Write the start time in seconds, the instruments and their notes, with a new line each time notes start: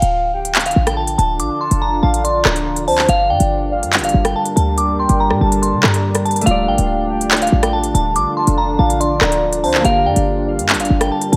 Already playing: ambient pad D3 D4 F4, soft synth lead F5, synth bell G5
0.02 808-style bass D1, closed hi-hat
0.34 soft synth lead G5
0.45 closed hi-hat
0.55 clap, closed hi-hat
0.60 closed hi-hat
0.66 synth bell F5, closed hi-hat
0.71 closed hi-hat
0.76 808-style bass A1
0.87 synth bell G5, cross-stick, closed hi-hat
0.97 synth bell A5
1.07 closed hi-hat
1.18 808-style bass D1, synth bell A5, closed hi-hat
1.40 808-style bass A1, synth bell D6, closed hi-hat
1.61 soft synth lead A5, synth bell C6
1.71 808-style bass F1, closed hi-hat
1.82 synth bell A#5
2.03 808-style bass A1, soft synth lead F5, synth bell A5
2.14 closed hi-hat
2.24 soft synth lead D5, synth bell C6, closed hi-hat
2.45 808-style bass D1, synth bell A#5, cross-stick, clap
2.56 closed hi-hat
2.76 closed hi-hat
2.87 808-style bass D2, soft synth lead C5, synth bell A5, open hi-hat
2.98 clap
3.09 808-style bass G1, ambient pad G3 D4 A#4, synth bell F5, closed hi-hat
3.30 808-style bass G2, soft synth lead D5, synth bell G5
3.40 808-style bass G1, closed hi-hat
3.72 soft synth lead F5
3.83 808-style bass G2, closed hi-hat
3.93 clap, closed hi-hat
3.98 808-style bass G1, closed hi-hat
4.04 synth bell F5, closed hi-hat
4.09 closed hi-hat
4.14 808-style bass G1
4.25 synth bell G5, cross-stick, closed hi-hat
4.36 synth bell A5
4.45 closed hi-hat
4.56 808-style bass D2, synth bell A5, closed hi-hat
4.78 synth bell D6, closed hi-hat
4.99 soft synth lead G5, synth bell C6
5.09 808-style bass G1, closed hi-hat
5.20 synth bell A#5
5.30 808-style bass A#2, cross-stick
5.41 808-style bass G1, soft synth lead A5, synth bell A5
5.52 closed hi-hat
5.62 synth bell C6, closed hi-hat
5.73 808-style bass D3
5.83 808-style bass G2, synth bell A#5, cross-stick, clap
5.94 closed hi-hat
6.15 cross-stick, closed hi-hat
6.25 synth bell A5, closed hi-hat
6.31 closed hi-hat
6.36 closed hi-hat
6.41 harp A3, closed hi-hat
6.46 808-style bass D1, ambient pad D3 F4, harp F4, synth bell F5, closed hi-hat
6.51 harp D5
6.68 808-style bass A1, soft synth lead F5, synth bell G5
6.78 808-style bass D1, closed hi-hat
7.10 soft synth lead G5
7.21 closed hi-hat
7.31 clap, closed hi-hat
7.37 closed hi-hat
7.42 synth bell F5, closed hi-hat
7.47 closed hi-hat
7.52 808-style bass A1
7.63 synth bell G5, cross-stick, closed hi-hat
7.73 synth bell A5
7.84 closed hi-hat
7.94 808-style bass D1, synth bell A5, closed hi-hat
8.16 808-style bass A1, synth bell D6, closed hi-hat
8.37 soft synth lead A5, synth bell C6
8.47 808-style bass F1, closed hi-hat
8.58 synth bell A#5
8.79 808-style bass A1, soft synth lead F5, synth bell A5
8.90 closed hi-hat
9.00 soft synth lead D5, synth bell C6, closed hi-hat
9.21 808-style bass D1, synth bell A#5, cross-stick, clap
9.32 closed hi-hat
9.53 closed hi-hat
9.63 808-style bass D2, soft synth lead C5, synth bell A5, open hi-hat
9.74 clap
9.79 harp A#3
9.84 808-style bass G1, ambient pad G3 G4 A#4, harp G4, synth bell F5, closed hi-hat
9.89 harp A#4
10.06 808-style bass G2, soft synth lead D5, synth bell G5
10.16 808-style bass G1, closed hi-hat
10.48 soft synth lead F5
10.59 808-style bass G2, closed hi-hat
10.69 clap, closed hi-hat
10.74 808-style bass G1, closed hi-hat
10.80 synth bell F5, closed hi-hat
10.85 closed hi-hat
10.90 808-style bass G1
11.01 synth bell G5, cross-stick, closed hi-hat
11.12 synth bell A5
11.21 closed hi-hat
11.32 808-style bass D2, synth bell A5, closed hi-hat